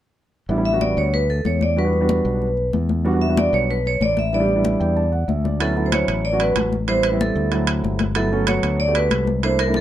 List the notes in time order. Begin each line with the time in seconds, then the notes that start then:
0.49 A1 G3 B3 D4 E4, high conga
0.57 G3 B3 D4 E4
0.65 E5, high conga
0.73 G3 B3 D4 F#4
0.81 D5, high conga
0.97 D2 C#5, high conga
1.13 B4, high conga
1.29 A4, high conga
1.45 E2 C#5, high conga
1.61 D5, high conga
1.76 G3 B3 D4 F#4 B4, high conga
1.84 G3 B3 D4 F#4
1.93 high conga
2.01 G3 B3 D4 F#4
2.09 high conga
2.25 B1, high conga
2.42 high conga
2.57 high conga
2.73 E2, high conga
2.89 high conga
3.05 G3 B3 D4 F#4, high conga
3.13 G3 B3 D4 F#4
3.21 E5, high conga
3.29 G3 B3 D4 F#4
3.37 D5, high conga
3.53 B1 C#5, high conga
3.70 B4, high conga
3.86 C#5, high conga
4.01 A1 D5, high conga
4.17 E5, high conga
4.33 G3 B3 D4 E4 D5, high conga
4.40 G3 B3 D4 G4
4.48 high conga
4.56 G3 B3 D4 E4
4.65 high conga
4.80 E2 G5, high conga
4.96 A5, high conga
5.12 F#5, high conga
5.28 D2 E5, high conga
5.44 D5, high conga
5.60 F#3 B3 C#4 E4 A4, high conga, high timbale
5.76 F#3 B3 C#4 E4, high conga
5.86 C5
5.92 F#3 B3 C#4 E4 C#5, high conga, high timbale
6.08 A1, high conga, high timbale
6.25 D5, high conga
6.32 F#3 B3 C#4 F#4
6.40 B4, high conga, high timbale
6.56 A1, high conga, high timbale, low timbale
6.73 high conga
6.88 G3 B3 C4 E4 C5, high timbale
7.03 B4, high conga, high timbale
7.12 G3 B3 C4 E4
7.21 A4, high conga
7.35 D2, high conga
7.51 F#3 A3 C4 E4, high conga, high timbale
7.67 high conga, high timbale
7.84 G1, high conga
7.99 high conga, high timbale
8.15 F#3 A3 B3 E4 A4, high conga, high timbale
8.32 F#3 A3 B3 C#4, high conga
8.47 F#3 A3 B3 F#4 C#5, high conga, high timbale
8.63 D2, high conga, high timbale
8.79 D5, high conga
8.87 A3 B3 F#4 G4
8.95 B4, high conga, high timbale
9.11 C2, high conga, high timbale
9.27 high conga
9.43 A3 A#3 D4 E4 C5, high conga, high timbale
9.59 A#4, high conga, high timbale
9.67 A3 A#3 D4 E4
9.74 A4, high conga